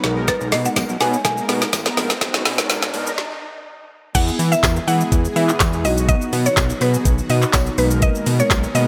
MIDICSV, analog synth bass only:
0, 0, Header, 1, 2, 480
1, 0, Start_track
1, 0, Key_signature, 5, "minor"
1, 0, Tempo, 483871
1, 279, Time_signature, 4, 2, 24, 8
1, 8804, End_track
2, 0, Start_track
2, 0, Title_t, "Analog synth bass"
2, 0, Program_c, 0, 38
2, 39, Note_on_c, 0, 35, 104
2, 277, Note_off_c, 0, 35, 0
2, 406, Note_on_c, 0, 35, 97
2, 517, Note_on_c, 0, 47, 93
2, 532, Note_off_c, 0, 35, 0
2, 673, Note_off_c, 0, 47, 0
2, 756, Note_on_c, 0, 35, 103
2, 839, Note_off_c, 0, 35, 0
2, 887, Note_on_c, 0, 35, 94
2, 960, Note_off_c, 0, 35, 0
2, 999, Note_on_c, 0, 47, 106
2, 1155, Note_off_c, 0, 47, 0
2, 1237, Note_on_c, 0, 35, 105
2, 1394, Note_off_c, 0, 35, 0
2, 1477, Note_on_c, 0, 47, 108
2, 1633, Note_off_c, 0, 47, 0
2, 1718, Note_on_c, 0, 33, 89
2, 1874, Note_off_c, 0, 33, 0
2, 1955, Note_on_c, 0, 34, 92
2, 2112, Note_off_c, 0, 34, 0
2, 2197, Note_on_c, 0, 35, 110
2, 2280, Note_off_c, 0, 35, 0
2, 2323, Note_on_c, 0, 35, 99
2, 2397, Note_off_c, 0, 35, 0
2, 2437, Note_on_c, 0, 47, 104
2, 2594, Note_off_c, 0, 47, 0
2, 2677, Note_on_c, 0, 35, 109
2, 2760, Note_off_c, 0, 35, 0
2, 2805, Note_on_c, 0, 35, 95
2, 2916, Note_on_c, 0, 47, 106
2, 2931, Note_off_c, 0, 35, 0
2, 3073, Note_off_c, 0, 47, 0
2, 4117, Note_on_c, 0, 40, 117
2, 4273, Note_off_c, 0, 40, 0
2, 4356, Note_on_c, 0, 52, 98
2, 4513, Note_off_c, 0, 52, 0
2, 4597, Note_on_c, 0, 40, 101
2, 4754, Note_off_c, 0, 40, 0
2, 4836, Note_on_c, 0, 52, 100
2, 4993, Note_off_c, 0, 52, 0
2, 5078, Note_on_c, 0, 40, 111
2, 5234, Note_off_c, 0, 40, 0
2, 5317, Note_on_c, 0, 52, 107
2, 5474, Note_off_c, 0, 52, 0
2, 5559, Note_on_c, 0, 40, 101
2, 5797, Note_on_c, 0, 35, 106
2, 5812, Note_off_c, 0, 40, 0
2, 6110, Note_off_c, 0, 35, 0
2, 6276, Note_on_c, 0, 47, 102
2, 6433, Note_off_c, 0, 47, 0
2, 6515, Note_on_c, 0, 35, 99
2, 6672, Note_off_c, 0, 35, 0
2, 6755, Note_on_c, 0, 47, 111
2, 6912, Note_off_c, 0, 47, 0
2, 6998, Note_on_c, 0, 35, 101
2, 7154, Note_off_c, 0, 35, 0
2, 7237, Note_on_c, 0, 47, 109
2, 7393, Note_off_c, 0, 47, 0
2, 7477, Note_on_c, 0, 35, 99
2, 7634, Note_off_c, 0, 35, 0
2, 7717, Note_on_c, 0, 35, 107
2, 8030, Note_off_c, 0, 35, 0
2, 8199, Note_on_c, 0, 47, 98
2, 8355, Note_off_c, 0, 47, 0
2, 8437, Note_on_c, 0, 35, 104
2, 8594, Note_off_c, 0, 35, 0
2, 8677, Note_on_c, 0, 47, 119
2, 8804, Note_off_c, 0, 47, 0
2, 8804, End_track
0, 0, End_of_file